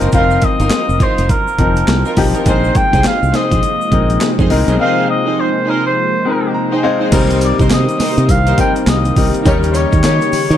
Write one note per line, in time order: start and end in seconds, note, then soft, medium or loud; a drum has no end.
0.00 0.11 F#1 medium
0.00 0.13 F3 medium
0.00 0.14 C4 medium
0.00 0.14 D#4 medium
0.00 0.11 D#4 medium
0.00 0.11 F4 medium
0.00 1.60 A#4 loud
0.00 0.12 A#4 medium
0.00 closed hi-hat soft
0.00 shaker medium
0.12 0.37 F1 loud
0.12 1.17 F3 medium
0.12 1.17 C4 medium
0.12 0.35 D#4 medium
0.12 1.17 D#4 medium
0.12 0.35 F4 medium
0.12 1.17 F4 medium
0.12 0.35 A#4 loud
0.12 0.46 F5 loud
0.12 kick loud
0.12 closed hi-hat medium
0.12 shaker medium
0.31 shaker medium
0.41 1.04 D#5 loud
0.41 kick medium
0.41 closed hi-hat medium
0.41 shaker medium
0.60 0.69 G1 medium
0.60 0.78 D#4 medium
0.60 0.78 F4 medium
0.60 0.78 A#4 medium
0.60 closed hi-hat soft
0.60 shaker soft
0.70 snare medium
0.70 clap medium
0.70 closed hi-hat medium
0.70 shaker medium
0.89 0.99 F1 medium
0.89 shaker medium
1.00 1.22 D#4 medium
1.00 1.22 F4 medium
1.00 1.23 A#4 medium
1.00 1.32 C5 medium
1.00 kick loud
1.00 closed hi-hat medium
1.00 shaker soft
1.18 1.28 F1 medium
1.18 closed hi-hat medium
1.18 shaker soft
1.29 2.17 A#4 medium
1.29 kick medium
1.29 closed hi-hat medium
1.29 shaker medium
1.48 shaker medium
1.58 1.83 F1 medium
1.58 2.11 F3 medium
1.58 2.11 C4 medium
1.58 2.12 D#4 medium
1.58 2.12 A#4 medium
1.58 kick medium
1.58 closed hi-hat medium
1.76 closed hi-hat medium
1.76 shaker soft
1.88 2.03 C2 loud
1.88 snare loud
1.88 clap medium
1.88 closed hi-hat medium
1.88 shaker medium
2.05 2.23 D#4 medium
2.05 2.24 F4 medium
2.05 2.24 A#4 medium
2.05 shaker soft
2.17 2.32 B1 loud
2.17 2.43 F3 medium
2.17 2.43 C4 medium
2.17 2.43 D#4 medium
2.17 2.44 G4 loud
2.17 kick loud
2.17 open hi-hat medium
2.34 2.44 D#4 medium
2.34 2.53 F4 medium
2.34 2.53 A#4 medium
2.34 closed hi-hat soft
2.34 shaker soft
2.45 2.70 A#1 loud
2.45 7.08 C3 medium
2.45 7.08 F3 medium
2.45 7.08 G#3 medium
2.45 3.50 G#3 medium
2.45 7.08 A#3 medium
2.45 3.50 C4 medium
2.45 2.68 D#4 medium
2.45 7.08 D#4 medium
2.45 3.50 D#4 medium
2.45 2.68 G#4 medium
2.45 3.50 A#4 medium
2.45 2.68 C5 loud
2.45 2.78 C5 loud
2.45 kick loud
2.45 closed hi-hat medium
2.45 shaker medium
2.64 shaker soft
2.75 3.05 G5 loud
2.75 kick loud
2.75 closed hi-hat medium
2.75 shaker medium
2.93 3.03 C2 medium
2.93 3.11 D#4 medium
2.93 3.11 G#4 medium
2.93 3.11 C5 medium
2.93 kick loud
2.93 closed hi-hat medium
2.93 shaker medium
3.04 3.37 F5 loud
3.04 snare loud
3.04 clap medium
3.04 closed hi-hat medium
3.04 shaker medium
3.23 3.32 C2 medium
3.23 shaker soft
3.33 3.55 D#4 medium
3.33 3.56 G#4 medium
3.33 3.56 C5 medium
3.33 4.51 D#5 loud
3.33 snare medium
3.33 closed hi-hat medium
3.33 shaker soft
3.52 3.61 A#1 medium
3.52 kick loud
3.52 closed hi-hat medium
3.52 shaker soft
3.63 closed hi-hat medium
3.63 shaker medium
3.81 shaker soft
3.92 4.16 A#1 medium
3.92 4.44 G#3 medium
3.92 4.44 C4 medium
3.92 4.45 D#4 medium
3.92 4.45 A#4 medium
3.92 kick medium
3.92 closed hi-hat medium
4.10 closed hi-hat medium
4.10 shaker soft
4.21 snare loud
4.21 clap medium
4.21 closed hi-hat medium
4.21 shaker medium
4.38 4.48 F2 medium
4.38 4.56 D#4 medium
4.38 4.57 G#4 medium
4.38 4.57 C5 medium
4.38 kick medium
4.38 shaker soft
4.50 4.65 C2 loud
4.50 4.76 G#3 medium
4.50 4.76 C4 medium
4.50 4.76 D#4 medium
4.50 4.77 A#4 loud
4.50 open hi-hat medium
4.68 4.77 B1 medium
4.68 4.78 D#4 medium
4.68 4.78 G#4 medium
4.68 4.78 C5 medium
4.68 closed hi-hat medium
4.68 shaker soft
4.79 5.83 G#3 medium
4.79 5.83 C4 medium
4.79 5.01 D#4 loud
4.79 5.83 D#4 medium
4.79 5.01 G#4 medium
4.79 5.83 A#4 medium
4.79 5.01 C5 loud
4.79 5.07 F5 loud
5.10 5.41 D#5 loud
5.26 5.44 D#4 medium
5.26 5.44 G#4 medium
5.26 5.44 C5 medium
5.40 5.71 C5 loud
5.66 5.89 D#4 medium
5.66 5.89 G#4 medium
5.66 5.86 A#4 medium
5.66 5.89 C5 medium
5.86 6.51 C5 medium
6.25 6.77 G#3 medium
6.25 6.77 C4 medium
6.25 6.78 D#4 medium
6.25 6.78 A#4 medium
6.54 6.71 A#5 medium
6.71 6.89 D#4 medium
6.71 6.90 G#4 medium
6.71 6.90 C5 medium
6.71 6.83 G5 medium
6.83 7.09 G#3 medium
6.83 7.09 C4 medium
6.83 7.10 D#4 medium
6.83 7.10 C5 loud
6.83 7.11 F5 medium
7.00 7.10 D#4 medium
7.00 7.19 G#4 medium
7.00 7.10 C5 medium
7.11 7.52 C2 loud
7.11 9.43 C3 medium
7.11 10.57 D#3 medium
7.11 8.15 G3 loud
7.11 10.57 A#3 medium
7.11 8.16 C4 medium
7.11 7.34 D#4 medium
7.11 8.16 D#4 medium
7.11 10.57 D#4 medium
7.11 9.43 G4 medium
7.11 7.34 A#4 medium
7.11 8.16 A#4 loud
7.11 7.34 C5 loud
7.11 kick loud
7.11 closed hi-hat medium
7.11 crash loud
7.11 tambourine medium
7.11 shaker medium
7.30 closed hi-hat medium
7.30 shaker soft
7.41 7.56 D5 medium
7.41 closed hi-hat medium
7.41 tambourine medium
7.41 shaker medium
7.59 7.69 C2 loud
7.59 7.77 D#4 medium
7.59 7.77 A#4 medium
7.59 7.77 C5 medium
7.59 kick medium
7.59 closed hi-hat medium
7.59 shaker medium
7.70 7.86 C3 medium
7.70 8.32 D#5 medium
7.70 snare loud
7.70 clap medium
7.70 closed hi-hat medium
7.70 tambourine medium
7.70 shaker medium
7.89 closed hi-hat soft
7.89 shaker soft
7.99 8.21 D#4 medium
7.99 8.21 A#4 medium
7.99 8.22 C5 medium
7.99 muted fingered electric bass stroke soft
7.99 snare medium
7.99 open hi-hat medium
7.99 tambourine medium
7.99 shaker soft
8.18 8.27 C3 loud
8.18 closed hi-hat medium
8.18 shaker soft
8.29 8.53 C2 loud
8.29 8.59 F5 medium
8.29 kick medium
8.29 closed hi-hat medium
8.29 tambourine medium
8.29 shaker medium
8.46 8.64 D#4 medium
8.46 8.64 A#4 medium
8.46 8.64 C5 medium
8.46 closed hi-hat medium
8.46 shaker medium
8.58 9.10 G3 medium
8.58 9.10 C4 medium
8.58 9.10 D#4 medium
8.58 9.11 A#4 medium
8.58 8.73 G5 loud
8.58 kick medium
8.58 closed hi-hat medium
8.58 tambourine medium
8.76 closed hi-hat medium
8.76 shaker soft
8.87 9.11 C2 loud
8.87 9.32 D#5 medium
8.87 snare loud
8.87 clap medium
8.87 closed hi-hat medium
8.87 tambourine medium
8.87 shaker medium
9.05 closed hi-hat medium
9.05 shaker soft
9.16 9.31 C2 medium
9.16 9.43 G3 medium
9.16 9.43 C4 medium
9.16 9.43 D#4 medium
9.16 9.43 A#4 medium
9.16 kick loud
9.16 open hi-hat medium
9.16 shaker soft
9.35 closed hi-hat soft
9.35 shaker medium
9.45 9.85 D#2 loud
9.45 10.57 C#3 medium
9.45 10.49 G3 loud
9.45 10.49 C#4 medium
9.45 9.67 D#4 medium
9.45 10.49 D#4 medium
9.45 9.67 G4 medium
9.45 10.57 G4 medium
9.45 10.49 A#4 loud
9.45 9.67 C#5 loud
9.45 kick loud
9.45 closed hi-hat medium
9.45 tambourine medium
9.45 shaker medium
9.63 closed hi-hat medium
9.63 shaker medium
9.71 9.96 D#4 medium
9.71 9.96 G4 medium
9.71 9.78 C5 medium
9.71 9.97 C#5 medium
9.71 closed hi-hat medium
9.71 tambourine medium
9.71 shaker medium
9.77 10.57 C#5 loud
9.93 10.02 D#2 medium
9.93 kick medium
9.93 closed hi-hat medium
9.93 shaker medium
10.03 10.19 D#3 medium
10.03 10.26 D#4 medium
10.03 10.26 G4 medium
10.03 10.26 C#5 medium
10.03 snare loud
10.03 clap medium
10.03 closed hi-hat medium
10.03 tambourine medium
10.03 shaker medium
10.21 closed hi-hat soft
10.21 shaker soft
10.32 muted fingered electric bass stroke medium
10.32 open hi-hat medium
10.32 tambourine medium
10.32 shaker soft
10.50 10.57 D#3 loud
10.50 10.57 D#4 medium
10.50 10.57 G4 medium
10.50 10.57 C#5 medium
10.50 closed hi-hat medium
10.50 shaker soft